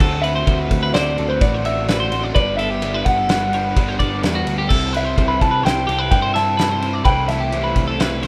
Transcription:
0.00 D2 D3 A3 C4 F#4 A4, kick, crash
0.22 A3 C4 F#4 B4 E5, ride
0.36 C5
0.46 D2 D3 A3 C4 F#4, kick, ride
0.59 B4
0.71 D2, kick, ride
0.83 B4
0.94 D2 D3 A3 C4 F#4 C5 D5, snare, ride
1.17 D2 A3 C4 F#4 A4, ride
1.29 B4 C5
1.41 A1 D3 A3 C4 F#4 D5, kick, snare, ride
1.54 C5
1.65 A3 C4 F#4 E5, ride
1.88 D3 A3 C4 F#4 B4, snare, ride
2.00 C5
2.12 A3 C4 F#4, ride
2.23 D5
2.35 G1 G2 D3 G3 B3 D4 B4 D5, kick, ride
2.57 G3 B3 D4 A4 E5, ride
2.71 G4
2.82 D3 G3 B3 D4, ride
2.94 B4
3.05 G1 F#5, kick, ride
3.18 A4
3.29 G2 D3 G3 B3 D4 B4, snare, ride
3.53 G3 B3 D4 C5, ride
3.64 B4
3.77 G1 D3 G3 B3 D4, kick, ride
3.89 C5
3.99 G1 G3 B3 D4 D5, kick, ride
4.23 E2 G2 D3 G3 B3 D4 B4, snare, ride
4.35 F#4
4.47 D2 G3 B3 D4, ride
4.58 G4
4.69 C2 C3 G3 C4 E4 A4, kick, crash
4.93 G3 C4 E4 B4 E5, ride
5.05 C5
5.17 C2 C3 G3 C4 E4, kick, ride
5.28 B4
5.41 C2 A5, kick, ride
5.51 B4
5.63 C2 C3 G3 C4 E4 C5 G5, snare, ride
5.87 C2 G3 C4 E4 G4, ride
5.99 B4
6.11 G2 C3 G3 C4 E4 G5, kick, ride
6.22 C5
6.34 G3 C4 E4 E5 A5, snare, ride
6.57 C3 G3 C4 E4 B4, snare, ride
6.69 C5
6.82 G3 C4 E4, ride
6.93 D5
7.05 C2 C3 E3 A3 C4 E4 B4 G5, kick, ride
7.28 A3 C4 E4 A4 E5, snare, ride
7.40 G4
7.52 E3 A3 C4 E4, ride
7.64 B4
7.76 C2, kick, ride
7.88 A4
7.99 C3 E3 A3 C4 E4 B4, snare, ride
8.23 E4 C5, snare, ride

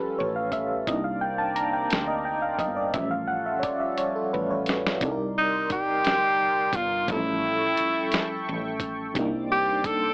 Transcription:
Already playing: F3 G3 C#4 F4 G4 A4 B4
0.19 A1 C#5
0.36 F5
0.52 E5, kick, closed hi-hat
0.87 C2 C3 A#3 C4 D4 D#4 A#4 D5 D#5, kick, closed hi-hat
1.04 F5
1.21 G5
1.38 A5
1.56 A#5, closed hi-hat
1.73 G5
1.90 D2, snare, closed hi-hat
2.07 D#5
2.25 G5
2.42 F5
2.59 G1 D#5, kick, closed hi-hat
2.76 D5
2.93 A1 F3 G3 C#4 F4 A4 E5, kick, closed hi-hat
3.11 F5
3.28 F#5
3.46 E5
3.60 C#5 D5, kick, closed hi-hat
3.64 muted fretless electric bass stroke
3.80 E5
3.98 C#5, muted fretless electric bass stroke, closed hi-hat
4.16 A4
4.33 A1 F3 G3 C#4 B4
4.51 C#5
4.66 snare, closed hi-hat
4.87 snare
5.00 C2 C3 G3 D#4 A#4 D5 C6, kick, closed hi-hat
5.05 A4
5.12 A#4
5.38 D#4
5.70 G4, kick, closed hi-hat
6.05 D2, snare, closed hi-hat
6.73 G1 F4, kick, closed hi-hat
7.07 A1 A2 F3 G3 B3 E4 A4 E5 G5 C#6, kick, closed hi-hat
7.12 C#4 A4
7.77 muted fretless electric bass stroke, closed hi-hat
8.12 muted fretless electric bass stroke, snare, closed hi-hat
8.49 A1
8.80 kick, closed hi-hat
9.14 C2 C3 G3 D4 D#4 C5 D5 G5 D6, kick, closed hi-hat
9.18 A#3
9.51 G4
9.84 A4, kick, closed hi-hat

